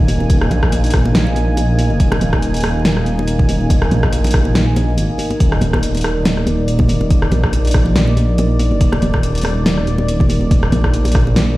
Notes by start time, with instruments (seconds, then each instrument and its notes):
Already playing: detuned saw bass D#1, analog synth pad A#3 D#4 G#5
0.08 open hi-hat, high conga
0.20 muted conga, high conga
0.30 kick, closed hi-hat
0.41 detuned saw bass D#1, cross-stick
0.51 detuned saw bass A#1, closed hi-hat, muted conga, high conga, low conga
0.63 kick, cross-stick
0.72 closed hi-hat, muted conga
0.84 closed hi-hat
0.86 closed hi-hat
0.90 kick, cross-stick, closed hi-hat, open hi-hat
1.05 muted conga
1.15 snare, closed hi-hat
1.27 muted conga
1.36 closed hi-hat, high conga
1.57 closed hi-hat, muted conga
1.79 open hi-hat, muted conga, high conga
1.90 detuned saw bass F#1, high conga
2.00 detuned saw bass D#1, kick, closed hi-hat
2.12 cross-stick, muted conga
2.21 closed hi-hat, high conga, low conga
2.33 kick, cross-stick, muted conga
2.42 closed hi-hat
2.54 closed hi-hat
2.57 closed hi-hat
2.60 cross-stick, closed hi-hat, open hi-hat, muted conga
2.85 snare, closed hi-hat, muted conga
2.97 cross-stick
3.06 detuned saw bass D#1, closed hi-hat, high conga
3.19 muted conga
3.28 closed hi-hat
3.39 kick, muted conga
3.49 open hi-hat, high conga
3.61 high conga
3.70 kick, closed hi-hat, muted conga
3.82 detuned saw bass D#1, cross-stick
3.91 detuned saw bass A#1, closed hi-hat, muted conga, high conga, low conga
4.03 kick, cross-stick
4.13 closed hi-hat
4.24 closed hi-hat, muted conga
4.27 closed hi-hat
4.31 kick, cross-stick, closed hi-hat, open hi-hat
4.45 muted conga
4.55 snare, closed hi-hat
4.76 closed hi-hat, muted conga, high conga
4.98 detuned saw bass G#1, closed hi-hat, muted conga
5.18 open hi-hat, high conga
5.30 closed hi-hat, muted conga, high conga
5.40 detuned saw bass D#1, analog synth pad D5, kick, closed hi-hat, muted conga
5.52 cross-stick
5.61 closed hi-hat, high conga, low conga
5.73 kick, cross-stick, muted conga
5.83 closed hi-hat
5.95 closed hi-hat, muted conga
5.97 closed hi-hat
6.01 cross-stick, closed hi-hat, open hi-hat
6.25 snare, closed hi-hat, muted conga
6.37 cross-stick
6.47 detuned saw bass D#1, closed hi-hat, muted conga, high conga
6.68 closed hi-hat
6.79 kick, muted conga
6.89 open hi-hat, high conga
7.01 muted conga, high conga
7.10 kick, closed hi-hat
7.22 detuned saw bass D#1, cross-stick
7.32 detuned saw bass A#1, closed hi-hat, muted conga, high conga, low conga
7.44 kick, cross-stick
7.53 closed hi-hat, muted conga
7.65 closed hi-hat
7.67 closed hi-hat
7.71 kick, cross-stick, closed hi-hat, open hi-hat
7.86 muted conga
7.96 snare, closed hi-hat
8.08 muted conga
8.17 closed hi-hat, high conga
8.38 closed hi-hat, muted conga
8.59 open hi-hat, muted conga, high conga
8.71 detuned saw bass F#1, high conga
8.81 detuned saw bass D#1, kick, closed hi-hat
8.92 cross-stick, muted conga
9.02 closed hi-hat, high conga, low conga
9.14 kick, cross-stick, muted conga
9.23 closed hi-hat
9.35 closed hi-hat
9.38 closed hi-hat
9.41 cross-stick, closed hi-hat, open hi-hat, muted conga
9.66 snare, closed hi-hat, muted conga
9.78 cross-stick
9.87 detuned saw bass D#1, closed hi-hat, high conga
9.98 muted conga
10.08 closed hi-hat
10.20 kick, muted conga
10.29 open hi-hat, high conga
10.41 high conga
10.51 kick, closed hi-hat, muted conga
10.63 detuned saw bass D#1, cross-stick
10.72 detuned saw bass A#1, closed hi-hat, muted conga, high conga, low conga
10.84 kick, cross-stick
10.94 closed hi-hat
11.05 closed hi-hat, muted conga
11.08 closed hi-hat
11.12 kick, cross-stick, closed hi-hat, open hi-hat
11.27 muted conga
11.36 snare, closed hi-hat